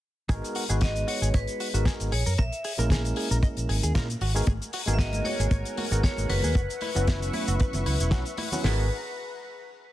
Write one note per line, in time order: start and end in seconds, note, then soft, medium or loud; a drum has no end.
0.29 0.40 G#1 medium
0.29 0.64 G#3 loud
0.29 0.64 B3 medium
0.29 0.64 D#4 medium
0.29 0.64 F#4 medium
0.29 0.34 G#4 loud
0.29 0.64 A#4 loud
0.29 kick loud
0.29 closed hi-hat medium
0.29 cabasa medium
0.44 closed hi-hat medium
0.44 cabasa soft
0.55 0.63 F#4 medium
0.55 open hi-hat loud
0.69 1.02 G#1 medium
0.69 1.70 G#3 medium
0.69 1.71 B3 medium
0.69 1.71 D#4 medium
0.69 1.71 F#4 medium
0.69 0.76 G#4 loud
0.69 1.71 B4 loud
0.69 closed hi-hat medium
0.69 cabasa medium
0.81 0.92 F#4 loud
0.81 1.09 D#5 loud
0.81 kick loud
0.81 snare loud
0.81 closed hi-hat loud
0.81 cabasa medium
0.96 closed hi-hat medium
0.96 cabasa soft
1.08 1.18 F#4 medium
1.08 1.35 C#5 loud
1.08 open hi-hat loud
1.22 1.30 G#1 medium
1.22 1.28 G#4 loud
1.22 closed hi-hat medium
1.22 cabasa medium
1.34 1.44 G#1 medium
1.34 1.83 B4 medium
1.34 1.38 C#5 loud
1.34 kick loud
1.34 closed hi-hat loud
1.34 cabasa medium
1.47 closed hi-hat medium
1.47 cabasa medium
1.60 1.67 F#4 medium
1.60 open hi-hat loud
1.74 1.83 G#1 loud
1.74 2.11 G#3 medium
1.74 2.11 B3 medium
1.74 2.11 D#4 medium
1.74 1.83 F#4 medium
1.74 2.11 F#4 medium
1.74 2.11 A#4 loud
1.74 closed hi-hat medium
1.74 cabasa medium
1.85 1.93 G#4 loud
1.85 kick loud
1.85 snare loud
1.85 closed hi-hat loud
1.85 cabasa medium
2.00 2.09 G#1 medium
2.00 closed hi-hat medium
2.00 cabasa medium
2.12 2.22 A#1 medium
2.12 2.23 G#4 medium
2.12 2.39 C#5 medium
2.12 open hi-hat loud
2.26 2.35 F#2 medium
2.26 2.32 A#4 loud
2.26 cabasa medium
2.38 2.49 A#1 loud
2.38 2.43 A#4 loud
2.38 2.87 E5 loud
2.38 kick loud
2.38 closed hi-hat loud
2.38 cabasa medium
2.52 closed hi-hat medium
2.52 cabasa soft
2.64 2.72 G#4 medium
2.64 open hi-hat loud
2.78 3.11 A#1 medium
2.78 3.92 G#3 medium
2.78 3.92 A#3 medium
2.78 3.92 C#4 medium
2.78 3.92 E4 medium
2.78 2.85 A#4 loud
2.78 3.92 A#4 loud
2.78 closed hi-hat medium
2.78 cabasa medium
2.90 3.01 G#4 loud
2.90 kick loud
2.90 snare loud
2.90 closed hi-hat loud
2.90 cabasa medium
3.05 closed hi-hat medium
3.05 cabasa soft
3.16 3.27 G#4 medium
3.16 open hi-hat loud
3.30 3.39 A#1 loud
3.30 3.37 A#4 loud
3.30 closed hi-hat medium
3.30 cabasa medium
3.43 3.47 D#5 loud
3.43 kick loud
3.43 closed hi-hat medium
3.43 cabasa medium
3.57 3.65 A#1 medium
3.57 closed hi-hat medium
3.57 cabasa soft
3.69 3.79 G#1 medium
3.69 3.76 G#4 medium
3.69 open hi-hat loud
3.83 3.91 D#2 medium
3.83 3.92 G#4 medium
3.83 closed hi-hat medium
3.83 cabasa medium
3.94 4.14 A#2 loud
3.94 4.06 G#3 medium
3.94 4.06 A#3 medium
3.94 4.06 C#4 medium
3.94 4.06 E4 medium
3.94 4.02 A#4 loud
3.94 4.06 A#4 loud
3.94 kick loud
3.94 snare loud
3.94 closed hi-hat loud
3.94 cabasa medium
4.10 closed hi-hat medium
4.10 cabasa medium
4.21 4.40 G#1 medium
4.21 4.32 F#4 medium
4.21 open hi-hat loud
4.34 4.44 G#3 loud
4.34 4.44 B3 medium
4.34 4.45 D#4 medium
4.34 4.45 F#4 medium
4.34 4.41 G#4 loud
4.34 4.45 A#4 loud
4.34 cabasa medium
4.47 4.57 G#1 loud
4.47 4.52 G#4 loud
4.47 6.54 A#4 medium
4.47 8.60 F#5 medium
4.47 6.54 G#5 medium
4.47 kick loud
4.47 closed hi-hat medium
4.47 muted conga medium
4.47 cabasa medium
4.62 closed hi-hat medium
4.62 cabasa medium
4.73 4.80 F#4 medium
4.73 open hi-hat loud
4.86 5.20 G#1 medium
4.86 5.88 G#3 loud
4.86 5.88 B3 medium
4.86 5.88 D#4 medium
4.86 5.88 F#4 medium
4.86 4.93 G#4 loud
4.86 5.89 A#4 loud
4.86 closed hi-hat medium
4.86 muted conga soft
4.86 cabasa medium
4.94 4.99 E5 medium
4.99 5.10 F#4 loud
4.99 5.26 D#5 loud
4.99 kick loud
4.99 snare loud
4.99 closed hi-hat loud
4.99 cabasa medium
5.13 closed hi-hat medium
5.13 muted conga medium
5.13 cabasa medium
5.24 5.36 F#4 medium
5.24 5.74 C#5 loud
5.24 open hi-hat loud
5.24 high conga medium
5.39 5.48 G#1 loud
5.39 5.46 G#4 loud
5.39 closed hi-hat medium
5.39 cabasa medium
5.51 5.61 G#1 medium
5.51 5.56 C#5 loud
5.51 kick loud
5.51 closed hi-hat medium
5.51 muted conga medium
5.51 cabasa medium
5.65 closed hi-hat medium
5.65 cabasa soft
5.77 5.85 F#4 medium
5.77 open hi-hat loud
5.77 muted conga medium
5.91 6.00 G#1 loud
5.91 6.54 G#3 medium
5.91 6.54 B3 medium
5.91 6.54 D#4 medium
5.91 6.01 F#4 medium
5.91 6.55 F#4 medium
5.91 6.55 A#4 medium
5.91 closed hi-hat medium
5.91 cabasa medium
6.04 6.11 G#4 loud
6.04 6.30 C#5 loud
6.04 kick loud
6.04 snare loud
6.04 closed hi-hat loud
6.04 cabasa medium
6.17 6.26 G#1 medium
6.17 closed hi-hat medium
6.17 muted conga medium
6.17 cabasa medium
6.29 6.40 F#1 loud
6.29 6.40 F#4 medium
6.29 8.34 B4 loud
6.29 open hi-hat loud
6.29 low conga medium
6.42 6.52 D#2 medium
6.42 6.50 G#4 loud
6.42 muted conga medium
6.42 cabasa medium
6.55 6.66 F#1 loud
6.55 6.60 F#4 loud
6.55 8.63 B4 medium
6.55 8.62 E5 medium
6.55 8.62 C#6 medium
6.55 kick loud
6.55 closed hi-hat medium
6.55 cabasa medium
6.70 closed hi-hat medium
6.70 cabasa medium
6.81 6.89 E4 medium
6.81 open hi-hat loud
6.81 muted conga medium
6.95 7.28 F#1 medium
6.95 8.09 F#3 medium
6.95 8.09 B3 medium
6.95 8.09 C#4 medium
6.95 8.10 E4 medium
6.95 7.02 F#4 loud
6.95 8.10 B4 loud
6.95 closed hi-hat medium
6.95 cabasa medium
7.07 7.19 E4 loud
7.07 kick loud
7.07 snare loud
7.07 closed hi-hat medium
7.07 muted conga medium
7.07 low conga loud
7.07 cabasa medium
7.22 closed hi-hat medium
7.22 cabasa soft
7.33 7.45 E4 medium
7.33 open hi-hat loud
7.33 high conga medium
7.48 7.56 F#1 loud
7.48 7.54 F#4 loud
7.48 closed hi-hat medium
7.48 muted conga soft
7.48 cabasa medium
7.60 7.64 B4 loud
7.60 kick loud
7.60 closed hi-hat loud
7.60 cabasa medium
7.73 7.83 F#1 medium
7.73 closed hi-hat medium
7.73 muted conga medium
7.73 high conga medium
7.73 low conga medium
7.73 cabasa medium
7.86 7.96 C#2 medium
7.86 7.93 E4 medium
7.86 open hi-hat loud
7.99 8.12 E1 loud
7.99 8.09 E4 medium
7.99 closed hi-hat medium
7.99 cabasa medium
8.11 8.22 B1 medium
8.11 8.23 F#3 medium
8.11 8.23 B3 medium
8.11 8.23 C#4 medium
8.11 8.24 E4 medium
8.11 8.19 F#4 loud
8.11 8.24 B4 loud
8.11 kick loud
8.11 snare loud
8.11 closed hi-hat medium
8.11 muted conga soft
8.11 cabasa medium
8.26 closed hi-hat medium
8.26 cabasa soft
8.37 8.49 E4 medium
8.37 open hi-hat loud
8.37 muted conga medium
8.52 8.62 F#3 medium
8.52 8.62 B3 medium
8.52 8.62 C#4 medium
8.52 8.62 E4 medium
8.52 8.59 F#4 loud
8.52 8.62 B4 loud
8.52 low conga medium
8.52 cabasa medium
8.63 8.88 G#1 medium
8.63 8.83 G#3 medium
8.63 8.84 B3 medium
8.63 8.84 D#4 medium
8.63 8.84 F#4 medium
8.63 8.89 G#4 medium
8.63 8.89 G#4 loud
8.63 8.85 A#4 medium
8.63 8.89 B4 medium
8.63 8.89 F#5 medium
8.63 8.89 A#5 medium
8.63 snare loud
8.63 crash medium